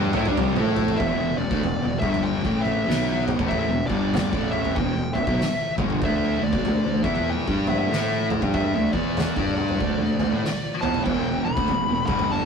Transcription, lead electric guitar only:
0.97 E5
1.38 D5
1.99 E5
2.23 G5
2.61 E5
3.48 E5
3.87 D5
4.51 E5
4.75 G5
5.14 E5
6.05 E5
6.44 D5
7.04 E5
7.30 G5
7.68 E5
8.54 E5
8.92 D5
9.55 D5
10.81 A5
11.04 G5
11.45 B5
12.06 B5
12.31 A5

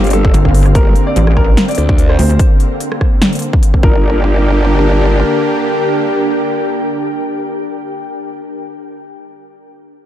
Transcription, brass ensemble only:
0.45 D4 G4 A#4
1.37 D4 G4 A#4
3.83 D4 G4 A#4

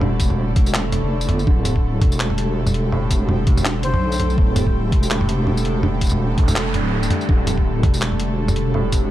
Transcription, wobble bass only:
Already playing: E1
0.56 E1
1.03 F1
1.29 G1
1.47 D1
2.02 E1
3.47 E1
3.83 F1
3.94 B1
4.38 D1
4.92 E1
6.38 E1
6.74 D1
7.29 D1
7.84 E1

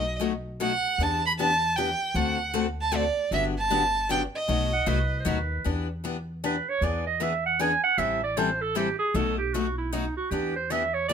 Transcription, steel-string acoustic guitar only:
0.20 B2 F#3 A3 D#4 F#4
0.60 B2 F#3 A3 D#4 F#4
1.00 E3 B3 D4 G4
1.39 E3 B3 D4 G4
1.77 E3 B3 D4 G4
2.15 D3 A3 C4 F#4 A4
2.54 D3 A3 C4 F#4 A4
2.92 D3 A3 C4 F#4 A4
3.32 D3 F#3 B3 D4 G4
3.70 D3 F#3 B3 D4 G4
4.09 D3 F#3 B3 D4 G4
4.48 B2 F#3 A3 D#4 F#4
4.86 B2 F#3 A3 D#4 F#4
5.25 B2 F#3 A3 D#4 F#4
5.64 E3 B3 D4 G4
6.04 E3 B3 D4 G4
6.44 E3 B3 D4 G4
6.82 E3 B3 D4 G#4
7.20 E3 B3 D4 G#4
7.59 E3 B3 D4 G#4
7.98 E3 G3 C4 E4 A4
8.37 E3 G3 C4 E4 A4
8.75 E3 G3 C4 E4 A4
9.15 B2 F#3 A3 D#4 F#4
9.54 B2 F#3 A3 D#4 F#4
9.93 B2 F#3 A3 D#4 F#4
10.31 E3 B3 D4 G4
10.70 E3 B3 D4 G4
11.09 E3 B3 D4

